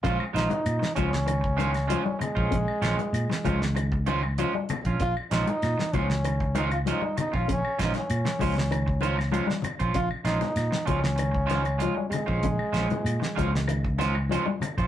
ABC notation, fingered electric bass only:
X:1
M:4/4
L:1/16
Q:1/4=97
K:Bbdor
V:1 name="Fingered electric bass" clef=bass
B,,, z B,,, z B,, z D,,8 z B,,, | B,,, z B,,, z B,, z D,,8 z B,,, | B,,, z B,,, z B,, z D,,8 z B,,, | B,,, z B,,, z B,, z D,,8 z B,,, |
B,,, z B,,, z B,, z D,,8 z B,,, | B,,, z B,,, z B,, z D,,8 z B,,, |]